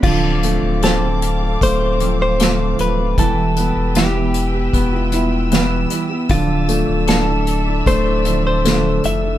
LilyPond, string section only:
\new Staff \with { instrumentName = "String section" } { \time 4/4 \key d \dorian \tempo 4 = 77 << { d'''1 | e'''1~ | e'''1 | } \\ { <c' f''>1 | <b' g''>1 | <d'' e''>1 | } >> }